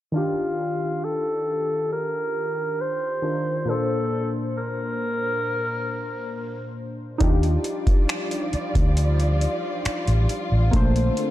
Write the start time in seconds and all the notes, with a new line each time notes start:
0.12 D#3 D4 F4
0.17 G4
1.04 A4
1.92 A#4
2.81 C5
3.22 D#3 D4 F4 A#4
3.65 A#2 A#3 D4 A4
3.71 C5
4.58 A#4
7.18 D#2 F3 G3 D4 D#4 F4 D5, kick, closed hi-hat
7.24 G4
7.43 closed hi-hat
7.64 closed hi-hat
7.87 kick, closed hi-hat
8.09 finger snap, closed hi-hat
8.31 closed hi-hat
8.53 muted fingered electric bass stroke, closed hi-hat
8.75 D2, kick, closed hi-hat
8.97 closed hi-hat
9.20 closed hi-hat
9.41 closed hi-hat
9.85 finger snap, muted fingered electric bass stroke, closed hi-hat
10.07 A1, closed hi-hat
10.29 closed hi-hat
10.52 A1
10.71 A#1 D3 A3 A#3 C4 D4 A4, kick, closed hi-hat
10.76 C5
10.96 closed hi-hat
11.17 closed hi-hat